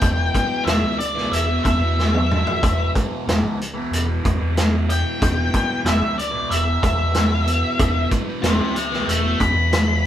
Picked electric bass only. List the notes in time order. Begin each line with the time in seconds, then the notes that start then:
0.02 E1
0.67 E1
0.83 C#2
1.32 E1
1.66 E1
1.80 E2
2.63 E1
3.28 E1
3.43 C#2
3.91 E1
4.25 E1
4.40 E2
5.22 E1
5.85 E1
6.02 C#2
6.51 E1
6.83 E1
7.00 E2
7.79 E1
8.43 E1
8.60 C#2
9.08 E1
9.40 E1
9.55 E2